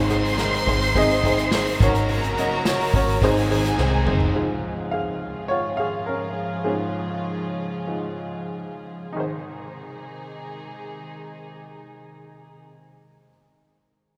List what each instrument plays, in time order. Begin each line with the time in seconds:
Already playing: picked electric bass G#1, overdriven electric guitar G#2 D#3 D#4 G#4, upright piano G#2 C4 D#4 G#4 C5, string section G#2 C3 D#3 C4 D#4, violin section C5 C6
0.09 overdriven electric guitar G#3 C4 D#4 G#4, upright piano C4 D#4 G#4 C5, hi-hat pedal, open hi-hat
0.24 overdriven electric guitar G#3 C4 D#4 G#4, hi-hat pedal, open hi-hat
0.37 upright piano C4 D#4 G#4 A#4, snare, hi-hat pedal, open hi-hat
0.53 hi-hat pedal, open hi-hat
0.66 picked electric bass G#1, upright piano C4 D#4 G#4 C5, kick, hi-hat pedal, open hi-hat
0.81 hi-hat pedal, open hi-hat
0.95 upright piano C4 D#4 G#4 D#5, kick, hi-hat pedal, open hi-hat
1.10 hi-hat pedal, open hi-hat
1.23 overdriven electric guitar G#3 C4 D#4 G#4, upright piano C4 D#4 G#4 C5, kick, hi-hat pedal, open hi-hat
1.37 snare, hi-hat pedal, open hi-hat
1.51 overdriven electric guitar G#3 C4 D#4 G#4, upright piano C4 D#4 G#4 C5, snare, hi-hat pedal, open hi-hat
1.66 hi-hat pedal, open hi-hat
1.80 picked electric bass G#1, upright piano G#2 C#4 F#4 A#4 C#5, string section A#2 C#3 F#3 C#4 F#4, overdriven electric guitar F#3 C#4 F#4 A#4, violin section A#4 A#5, kick, hi-hat pedal, open hi-hat
1.94 hi-hat pedal, open hi-hat
2.08 overdriven electric guitar G#2 C#3 F#3 C#4 F#4 A#4, hi-hat pedal, open hi-hat
2.23 hi-hat pedal
2.37 overdriven electric guitar F#3 C#4 F#4 A#4, upright piano C#4 F#4 A#4 D#5, hi-hat pedal, open hi-hat
2.51 overdriven electric guitar F#3 C#4 F#4 A#4, open hi-hat
2.65 upright piano C#4 F#4 A#4 C#5, snare, hi-hat pedal, open hi-hat
2.80 hi-hat pedal, open hi-hat
2.93 picked electric bass G#1, upright piano C#4 F#4 A#4 C#5, kick, hi-hat pedal, open hi-hat
3.08 hi-hat pedal, open hi-hat
3.21 picked electric bass G#1, overdriven electric guitar G#2 D#3 G#3 C4 D#4 G#4, upright piano G#2 C4 D#4 G#4 C5, string section C3 D#3 G#3 D#4 G#4, violin section G#4 G#5, kick, hi-hat pedal, open hi-hat
3.37 hi-hat pedal, open hi-hat
3.50 overdriven electric guitar G#3 C4 D#4 G#4, upright piano C4 D#4 G#4 C5, hi-hat pedal, open hi-hat
3.64 snare, hi-hat pedal, open hi-hat
3.78 picked electric bass C2, overdriven electric guitar G#3 C4 D#4 G#4, upright piano C4 D#4 G#4 C5, snare
4.06 picked electric bass F#1, overdriven electric guitar G#3 C4 D#4 G#4, upright piano C4 D#4 G#4 C5, mid tom
4.20 floor tom
4.34 upright piano G#2 F3 G#3, string section G#2 C#3 F3 G#3 F4 G#4
4.91 upright piano G#4 F5
5.48 upright piano F4 C#5
5.77 upright piano G#4 F5
6.06 upright piano C#4 A#4
6.64 upright piano G#2 F3 G#3 C#4 G#4
7.87 upright piano G#2 F3 G#3
9.13 upright piano G#1 D#4 G#4
9.17 string section C3 D#3 G#3 D#4 G#4, upright piano C5